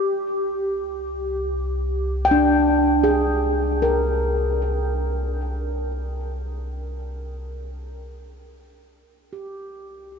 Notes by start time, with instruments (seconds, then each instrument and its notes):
Already playing: synth drone C2, handpan G4
2.25 handpan G5
2.31 handpan D4
3.04 handpan G#4
3.82 handpan A#4
9.06 synth drone C2
9.33 handpan G4